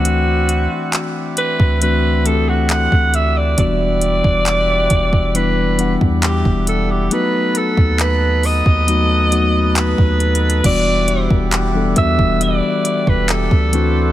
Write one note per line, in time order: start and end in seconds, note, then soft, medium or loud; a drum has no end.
0.00 0.68 D2 loud
0.00 1.21 E3 medium
0.00 1.21 A3 medium
0.00 1.21 C4 medium
0.00 3.54 C4 medium
0.00 1.22 D4 medium
0.00 7.08 E4 medium
0.00 1.11 F#4 medium
0.00 1.25 F#4 medium
0.00 7.08 D5 medium
0.00 10.61 F#5 medium
0.05 closed hi-hat medium
0.49 closed hi-hat medium
0.93 clap loud
0.93 closed hi-hat medium
1.37 1.79 B4 loud
1.37 closed hi-hat medium
1.60 2.88 D2 loud
1.60 kick medium
1.81 2.21 E3 medium
1.81 2.22 A3 medium
1.81 2.22 C4 medium
1.81 2.22 D4 medium
1.81 2.23 F#4 medium
1.81 2.28 B4 medium
1.81 closed hi-hat medium
2.25 3.45 E3 medium
2.25 3.46 A3 medium
2.25 3.46 C4 medium
2.25 3.46 D4 medium
2.25 2.33 G4 medium
2.25 2.50 A4 medium
2.25 closed hi-hat medium
2.34 3.50 A4 medium
2.49 2.72 F#4 medium
2.69 3.16 F#5 loud
2.69 clap loud
2.69 closed hi-hat medium
2.92 3.56 D2 loud
2.92 kick medium
3.14 3.39 E5 medium
3.14 closed hi-hat medium
3.37 3.59 D5 medium
3.57 4.22 E1 loud
3.57 5.18 E3 medium
3.57 5.18 G3 medium
3.57 7.08 G3 medium
3.57 5.18 B3 medium
3.57 5.18 D4 medium
3.57 5.19 F#4 medium
3.57 5.37 D5 loud
3.57 kick loud
3.57 closed hi-hat medium
4.01 closed hi-hat medium
4.24 4.88 E1 loud
4.24 kick medium
4.46 clap loud
4.46 closed hi-hat medium
4.90 5.97 E1 loud
4.90 kick medium
4.90 closed hi-hat medium
5.13 kick medium
5.34 5.74 E3 medium
5.34 5.75 G3 medium
5.34 5.75 B3 medium
5.34 5.75 D4 medium
5.34 5.76 E4 medium
5.34 5.97 B4 loud
5.34 closed hi-hat medium
5.78 6.98 E3 medium
5.78 6.99 G3 medium
5.78 6.99 B3 medium
5.78 6.99 D4 medium
5.78 7.00 F#5 medium
5.78 closed hi-hat medium
6.01 6.44 E2 medium
6.01 kick medium
6.23 6.64 G4 medium
6.23 clap loud
6.23 closed hi-hat medium
6.45 7.09 E1 loud
6.45 kick medium
6.67 6.92 A4 medium
6.67 closed hi-hat medium
6.91 7.15 G4 medium
7.10 8.70 F#3 medium
7.10 8.71 A3 medium
7.10 8.71 B3 medium
7.10 10.61 D#4 medium
7.10 8.71 D#4 medium
7.10 8.72 F#4 medium
7.10 10.61 A4 medium
7.10 10.61 B4 medium
7.10 7.59 B4 loud
7.10 closed hi-hat medium
7.55 8.03 A4 medium
7.55 closed hi-hat medium
7.77 8.62 D#2 medium
7.77 kick medium
7.99 8.47 B4 medium
7.99 clap loud
7.99 closed hi-hat medium
8.43 9.77 D#5 loud
8.43 open hi-hat soft
8.66 9.94 D#2 loud
8.66 kick medium
8.87 9.27 F#3 medium
8.87 9.28 A3 medium
8.87 9.28 B3 medium
8.87 9.28 D#4 medium
8.87 9.29 F#4 medium
8.87 closed hi-hat medium
9.31 10.51 F#3 medium
9.31 10.52 A3 medium
9.31 10.52 B3 medium
9.31 10.52 D#4 medium
9.31 10.52 F#4 medium
9.31 closed hi-hat medium
9.76 10.61 B4 medium
9.76 clap loud
9.76 closed hi-hat medium
9.98 10.62 D#2 loud
9.98 kick medium
10.20 closed hi-hat soft
10.20 open hi-hat medium
10.35 closed hi-hat medium
10.50 closed hi-hat medium
10.63 11.28 E1 loud
10.63 11.64 E3 medium
10.63 11.64 G3 medium
10.63 13.70 G3 medium
10.63 11.64 B3 medium
10.63 11.65 D4 medium
10.63 14.12 E4 medium
10.63 11.65 F#4 medium
10.63 14.12 D5 medium
10.63 11.49 D5 loud
10.63 14.12 F#5 medium
10.63 kick loud
10.63 closed hi-hat medium
10.63 crash loud
11.08 closed hi-hat medium
11.31 11.94 E1 loud
11.31 kick medium
11.52 clap loud
11.52 closed hi-hat medium
11.74 11.94 E3 medium
11.74 11.94 G3 medium
11.74 11.95 B3 medium
11.74 11.95 D4 medium
11.74 11.95 A4 medium
11.96 12.18 E2 loud
11.96 13.56 E3 medium
11.96 13.56 G3 medium
11.96 13.57 B3 medium
11.96 13.57 D4 medium
11.96 13.57 F#4 medium
11.96 12.44 E5 loud
11.96 kick medium
11.96 closed hi-hat medium
12.19 12.61 E1 loud
12.19 kick medium
12.41 13.10 D5 loud
12.41 closed hi-hat medium
12.85 closed hi-hat medium
13.07 13.50 E1 medium
13.07 13.32 B4 loud
13.07 kick medium
13.29 14.12 A4 loud
13.29 clap loud
13.29 closed hi-hat medium
13.51 14.12 D2 loud
13.51 kick medium
13.73 14.12 E3 medium
13.73 14.12 A3 medium
13.73 14.12 C4 medium
13.73 14.12 D4 medium
13.73 14.12 F#4 medium
13.73 14.12 C5 medium
13.73 closed hi-hat medium